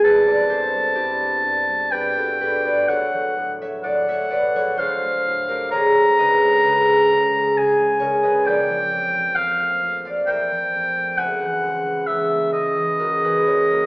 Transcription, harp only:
0.00 1.19 B3 soft
0.00 0.96 E4 medium
0.05 2.92 C2 medium
0.05 0.94 G4 medium
0.05 0.28 B4 medium
0.27 0.73 G3 soft
0.27 1.90 B4 medium
0.27 0.67 D5 medium
0.50 0.96 G2 soft
0.50 2.16 A4 medium
0.50 2.91 C5 medium
0.74 1.67 G3 soft
0.95 1.43 G2 soft
0.95 2.91 E4 medium
0.95 1.92 G4 medium
1.20 2.65 B3 soft
1.44 1.92 G2 soft
1.69 2.16 G3 soft
1.92 2.41 G2 soft
1.92 2.41 G4 medium
1.92 2.40 B4 medium
2.17 2.92 G3 soft
2.17 4.83 F#4 medium
2.17 2.57 A4 medium
2.41 2.93 G2 soft
2.41 2.92 G4 medium
2.41 2.65 B4 medium
2.65 2.92 B3 medium
2.65 2.93 B4 medium
2.65 3.05 D5 medium
2.88 4.78 D2 medium
2.88 3.84 A4 medium
2.88 3.61 C#5 medium
3.14 3.60 F#3 soft
3.38 3.84 A2 soft
3.61 4.54 F#3 soft
3.61 4.08 C#5 medium
3.61 4.01 E5 medium
3.84 4.30 A2 medium
3.84 4.56 A4 medium
3.84 4.29 D5 medium
4.08 5.02 A3 soft
4.08 4.55 C#5 medium
4.08 4.48 E5 medium
4.30 4.83 A2 soft
4.30 4.83 B4 medium
4.30 4.71 D5 medium
4.55 4.83 F#3 medium
4.55 4.78 A4 medium
4.55 4.95 C#5 medium
4.77 5.71 D2 medium
4.77 5.76 A4 medium
4.77 5.97 C5 medium
5.03 5.47 A3 soft
5.27 5.76 A2 soft
5.48 5.76 A3 medium
5.48 5.76 G4 medium
5.48 5.75 A#4 medium
5.71 8.49 D2 medium
5.71 6.65 G#4 medium
5.71 7.99 C#5 medium
5.96 6.42 G#3 soft
6.19 6.65 C#3 medium
6.19 6.63 B4 medium
6.19 8.22 D#5 medium
6.43 7.33 G#3 soft
6.65 7.11 C#3 soft
6.65 8.50 G#4 medium
6.65 8.23 B4 medium
6.89 8.22 C#4 soft
7.12 7.56 C#3 medium
7.34 7.78 G#3 soft
7.57 8.00 C#3 soft
7.79 8.50 G#3 medium
8.00 8.49 C#3 soft
8.00 8.45 A#4 medium
8.00 8.49 C#5 medium
8.23 8.49 C#4 soft
8.23 8.50 B4 medium
8.23 8.61 D#5 medium
8.45 11.22 A#1 medium
8.45 10.27 A#4 medium
8.45 10.05 D5 medium
8.69 9.14 F3 soft
8.92 9.35 F2 soft
9.15 10.04 F3 soft
9.36 9.81 F2 soft
9.60 10.95 A3 soft
9.82 10.26 F2 soft
10.05 10.50 F3 soft
10.05 11.23 D5 medium
10.05 10.44 F5 medium
10.27 10.73 F2 soft
10.27 12.98 A#4 medium
10.27 11.18 E5 medium
10.51 11.22 F3 soft
10.75 11.23 F2 soft
10.97 11.22 A3 soft
11.18 13.86 F#1 medium
11.18 13.86 E5 medium
11.18 13.86 G#5 medium
11.42 11.85 E3 soft
11.64 12.07 C#2 soft
11.86 12.75 E3 soft
12.08 12.52 C#2 soft
12.31 13.70 A#3 soft
12.54 13.00 C#2 soft
12.77 13.23 E3 soft
12.99 13.47 C#2 soft
12.99 13.71 F#4 medium
12.99 13.47 A#4 medium
13.24 13.86 E3 soft
13.24 13.86 G#4 soft
13.24 13.63 B4 medium
13.47 13.86 C#2 soft
13.47 13.70 A#4 soft
13.47 13.85 C#5 medium
13.71 13.86 A#3 soft
13.71 13.86 F#4 soft
13.71 13.86 A#4 medium

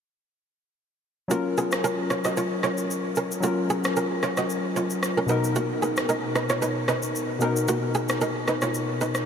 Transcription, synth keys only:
1.28 3.38 F#3 medium
1.28 3.39 C#4 medium
1.28 3.39 F4 medium
1.33 3.40 A#4 medium
3.40 5.24 F#3 medium
3.40 5.25 C#4 medium
3.40 5.26 F4 medium
3.46 5.27 A#4 medium
5.26 7.36 B2 medium
5.26 7.37 B3 medium
5.26 7.38 D#4 medium
5.31 7.39 A#4 medium
7.39 9.26 B2 medium
7.39 9.26 B3 medium
7.39 8.98 D#4 medium
7.44 8.99 A#4 medium

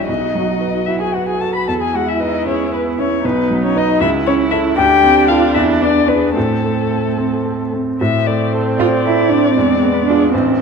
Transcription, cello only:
0.07 0.85 D#4 soft
0.88 1.02 E4 soft
1.00 1.15 G#4 soft
1.14 1.27 F#4 soft
1.27 1.42 G#4 soft
1.40 1.55 A4 soft
1.54 1.69 B4 soft
1.67 1.82 A4 soft
1.80 1.96 G#4 soft
1.95 2.07 F#4 soft
2.06 2.22 E4 soft
2.20 2.48 D#4 soft
2.47 2.73 C#4 soft
2.75 3.02 B3 soft
3.00 3.25 C#4 medium
3.25 3.66 B3 medium
3.65 3.79 C#4 medium
3.77 4.01 D#4 medium
4.02 4.10 E4 medium
4.26 4.51 C#4 medium
4.53 4.79 E4 medium
4.77 5.28 G4 medium
5.30 5.57 F4 medium
5.55 5.83 E4 medium
5.82 6.11 D4 medium
6.10 6.36 B3 medium
6.38 7.71 A3 soft
8.80 8.88 F4 medium
9.06 9.31 E4 medium
9.30 9.54 D4 medium
9.55 9.95 C4 medium
9.94 10.06 B3 medium
10.06 10.32 D4 medium
10.33 10.62 C4 medium

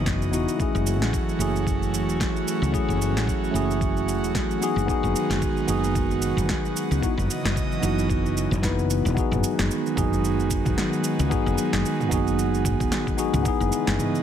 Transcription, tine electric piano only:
0.00 0.29 B3 medium
0.00 0.30 D#4 medium
0.00 0.31 E4 medium
0.00 0.31 F#4 loud
0.31 0.56 B3 medium
0.31 0.57 D#4 medium
0.31 0.57 E4 medium
0.31 0.57 F#4 medium
0.57 1.36 A3 medium
0.57 1.37 C#4 medium
0.57 1.38 E4 medium
0.62 1.38 G#4 medium
1.39 1.51 A3 medium
1.39 1.52 C#4 medium
1.39 1.52 E4 medium
1.39 1.52 G#4 loud
2.71 2.84 A3 medium
2.71 2.85 C#4 medium
2.71 2.85 E4 medium
2.71 2.86 G#4 loud
3.51 4.57 A3 loud
3.51 4.58 C#4 medium
3.51 4.59 E4 medium
3.56 4.60 G#4 loud
4.61 4.85 B3 medium
4.61 4.86 D#4 medium
4.61 4.86 F#4 medium
4.61 4.86 G#4 loud
4.86 5.65 B3 medium
4.86 5.65 D#4 medium
4.86 5.66 F#4 medium
4.91 5.67 G#4 medium
5.67 5.79 B3 medium
5.67 5.80 D#4 medium
5.67 5.80 F#4 medium
5.67 5.81 G#4 loud
7.01 7.13 B3 medium
7.01 7.14 D#4 medium
7.01 7.14 E4 medium
7.01 7.15 F#4 medium
7.80 8.59 B3 medium
7.80 8.60 D#4 medium
7.80 8.61 E4 medium
7.85 8.62 F#4 loud
8.62 9.13 B3 medium
8.62 9.14 D#4 medium
8.62 9.14 E4 medium
8.62 9.15 B4 loud
9.14 9.93 B3 medium
9.14 9.94 D#4 medium
9.14 9.95 F#4 medium
9.19 9.96 G#4 medium
9.96 10.08 B3 medium
9.96 10.08 D#4 medium
9.96 10.09 F#4 medium
9.96 10.09 G#4 medium
11.29 11.42 B3 medium
11.29 11.42 D#4 medium
11.29 11.42 F#4 medium
11.29 11.43 G#4 loud
12.09 13.14 B3 loud
12.09 13.15 D#4 medium
12.09 13.16 F#4 medium
12.14 13.17 G#4 loud
13.17 13.42 B3 medium
13.17 13.42 D#4 medium
13.17 13.43 F#4 medium
13.17 13.43 G#4 loud
13.43 14.22 B3 medium
13.43 14.23 D#4 medium
13.43 14.23 E4 medium
13.48 14.23 G#4 loud

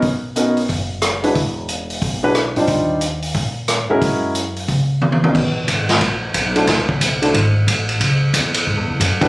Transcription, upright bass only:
0.02 0.66 B1 medium
0.69 1.32 F#1 medium
1.35 1.98 E1 medium
2.02 2.52 B1 medium
2.56 2.66 A#2 medium
2.67 3.31 D#2 medium
3.35 3.85 A#2 medium
3.90 muted upright bass stroke soft
4.02 4.65 F#2 medium
4.68 5.31 C#2 medium
5.34 5.67 B1 medium
5.68 6.00 G#1 medium
6.01 6.33 A#1 medium
6.34 6.67 B1 medium
6.67 7.00 D2 medium
7.01 7.33 C2 medium
7.34 7.66 G#1 loud
7.67 8.00 A1 loud
8.00 8.33 C#2 medium
8.33 8.66 E2 loud
8.67 8.77 G#2 medium
8.77 8.88 E2 medium
8.88 8.99 C#2 medium
9.00 9.20 F#2 loud
9.21 muted upright bass stroke soft

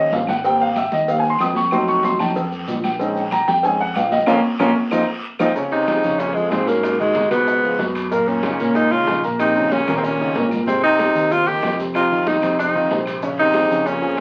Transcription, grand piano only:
0.00 0.26 F3 medium
0.00 0.26 G3 soft
0.00 0.26 C#4 medium
0.00 0.12 D#5 loud
0.13 0.28 F5 medium
0.28 0.44 F#5 medium
0.44 0.66 G3 medium
0.44 0.66 A#3 medium
0.44 0.66 C4 medium
0.44 0.60 G5 loud
0.61 0.76 F5 medium
0.78 0.93 E5 medium
0.93 1.08 D#5 medium
1.09 1.23 G3 soft
1.09 1.23 A#3 soft
1.09 1.23 C4 medium
1.09 1.19 F5 medium
1.19 1.30 G#5 medium
1.30 1.40 C6 loud
1.41 1.56 D#6 medium
1.56 1.72 C#6 medium
1.72 2.18 F#3 medium
1.72 2.18 A3 medium
1.72 2.19 D#4 medium
1.72 1.88 C6 medium
1.88 2.04 C#6 loud
2.04 2.20 C6 loud
2.20 2.34 F#3 soft
2.20 2.34 A3 soft
2.20 2.35 D#4 medium
2.20 2.65 A5 medium
2.99 3.21 G#3 medium
2.99 3.21 C4 medium
2.99 3.21 C#4 medium
2.99 3.22 D#4 medium
3.32 3.48 A#5 medium
3.48 3.63 G5 loud
3.64 3.78 G#3 soft
3.64 3.79 C4 soft
3.64 3.79 C#4 soft
3.64 3.79 D#4 soft
3.64 3.80 G#5 medium
3.80 3.96 F#5 loud
3.96 4.12 F5 medium
4.12 4.27 D#5 medium
4.27 4.38 A#3 loud
4.27 4.38 C#4 loud
4.27 4.37 F4 loud
4.60 4.70 A#3 loud
4.60 4.70 C#4 loud
4.60 4.70 F4 loud
4.92 5.02 C4 medium
4.92 5.02 D#4 loud
4.92 5.02 F4 medium
5.40 5.50 C4 loud
5.40 5.50 D#4 loud
5.40 5.50 F4 loud
5.56 5.82 C#3 medium
5.56 5.83 C#4 medium
5.56 5.83 C#5 medium
5.87 6.01 F3 medium
5.87 6.01 F4 medium
5.87 6.01 G#4 medium
6.04 6.30 C#3 medium
6.04 6.30 C#4 medium
6.04 6.30 C#5 medium
6.36 6.49 F3 medium
6.36 6.49 F4 medium
6.36 6.49 G#4 medium
6.52 6.65 F3 medium
6.52 6.65 F4 medium
6.52 6.65 G#4 medium
6.67 6.94 B2 medium
6.67 6.94 C#4 medium
6.67 6.94 A#4 medium
7.00 7.13 D#3 medium
7.00 7.13 D#4 medium
7.00 7.13 F#4 medium
7.16 7.29 D#3 medium
7.16 7.29 D#4 medium
7.16 7.29 F#4 medium
7.31 7.57 B2 medium
7.31 7.58 B3 medium
7.31 7.58 B4 medium
7.64 7.77 F3 medium
7.64 7.77 F4 medium
7.64 7.77 G#4 medium
7.79 8.06 B2 medium
7.79 8.06 B3 medium
7.79 8.06 B4 medium
8.12 8.38 A#2 medium
8.12 8.38 A#3 medium
8.12 8.39 A#4 medium
8.43 8.57 C#3 medium
8.43 8.57 C#4 medium
8.43 8.57 D#4 medium
8.59 8.86 A#2 medium
8.59 8.86 A#3 medium
8.59 8.86 A#4 medium
8.92 9.05 C#3 medium
8.92 9.05 C#4 medium
8.92 9.05 D#4 medium
9.08 9.21 C#3 medium
9.08 9.21 C#4 medium
9.08 9.22 D#4 medium
9.23 9.50 A#2 medium
9.23 9.50 A#3 medium
9.23 9.50 A#4 medium
9.56 9.69 C#3 medium
9.56 9.69 C#4 medium
9.56 9.70 F4 medium
9.72 9.85 C#3 medium
9.72 9.85 C#4 medium
9.72 9.85 F4 medium
9.88 10.14 A#2 medium
9.88 10.14 A#3 medium
9.88 10.14 A#4 medium
10.20 10.33 C#3 medium
10.20 10.33 C#4 medium
10.20 10.33 D#4 medium
10.36 10.62 A#2 medium
10.36 10.62 A#3 medium
10.36 10.62 A#4 medium
10.68 10.94 C3 medium
10.68 10.94 C4 medium
10.68 10.94 C5 medium
11.00 11.13 D#3 medium
11.00 11.13 D#4 medium
11.00 11.13 G4 medium
11.16 11.42 C3 medium
11.16 11.42 C4 medium
11.16 11.42 C5 medium
11.48 11.61 D#3 medium
11.48 11.61 D#4 medium
11.48 11.61 G4 medium
11.64 11.76 D#3 medium
11.64 11.77 D#4 medium
11.64 11.77 G4 medium
11.79 12.05 C3 medium
11.79 12.05 C4 medium
11.79 12.05 C5 medium
12.11 12.24 D#3 medium
12.11 12.24 D#4 medium
12.11 12.24 F4 medium
12.27 12.40 D#3 medium
12.27 12.40 D#4 medium
12.27 12.40 F4 medium
12.43 12.69 C3 medium
12.43 12.69 C4 medium
12.43 12.69 C5 medium
12.75 12.88 D#3 medium
12.75 12.88 D#4 medium
12.75 12.88 F4 medium
12.91 13.17 C3 medium
12.91 13.18 C4 medium
12.91 13.18 C5 medium
13.23 13.49 C#3 medium
13.23 13.49 C#4 medium
13.23 13.49 C#5 medium
13.55 13.68 F3 medium
13.55 13.68 F4 medium
13.55 13.68 G#4 medium
13.70 13.97 C#3 medium
13.70 13.97 C#4 medium
13.70 13.97 C#5 medium
14.02 14.15 F3 medium
14.02 14.15 F4 medium
14.02 14.15 G#4 medium

